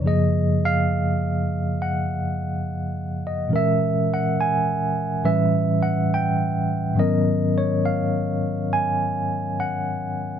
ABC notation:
X:1
M:4/4
L:1/16
Q:"Swing" 1/4=69
K:Gb
V:1 name="Tine electric piano"
e2 f4 z2 g6 e2 | _f2 g2 a4 =e2 g2 =g3 z | e2 d2 f4 a4 g4 |]
V:2 name="Tine electric piano" clef=bass
[G,,D,F,B,A]16 | [B,,_F,A,DB]8 [=A,,=E,=G,^C=B]8 | [A,,E,G,CDB]16 |]